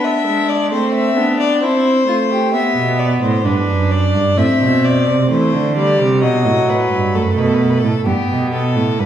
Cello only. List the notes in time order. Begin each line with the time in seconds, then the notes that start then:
2.76 B2
3.22 A2
3.45 G2
3.68 F#2
4.14 G2
4.37 A2
4.60 B2
5.07 C3
5.30 E3
5.53 D3
6.00 C3
6.23 B2
6.45 A2
6.92 G2
7.15 F#2
7.37 B2
7.83 A2
8.06 G2
8.29 B2
8.76 A2
8.99 G2